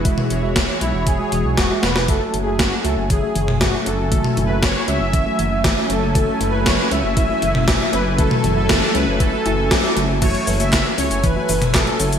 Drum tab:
CC |----------------|----------------|----------------|----------------|
HH |x-x-x-x-x-x-x-x-|x-x-x-x-x-x-x-x-|x-x-x-x-x-x-x-x-|x-x-x-x-x-x-x-x-|
SH |----------------|----------------|----------------|----------------|
CP |----------------|----------------|----------------|----------------|
SD |----o-------o-oo|----o-------o---|----o-------o---|----o-------o---|
T2 |-o--------------|-----------o----|-o--------------|-----------o----|
BD |o---o---o---o---|o---o---o---o---|o---o---o---o---|o---o---o---o---|

CC |----------------|x---------------|
HH |x-x-x-x-x-x-x-x-|xxoxx-oxx-oxxxox|
SH |----------------|x-xxx-xxx-xxx-xx|
CP |----------------|----x-------x---|
SD |----o-------o---|----o-------o---|
T2 |-o--------------|-----------o----|
BD |o---o---o---o---|o---o---o---o---|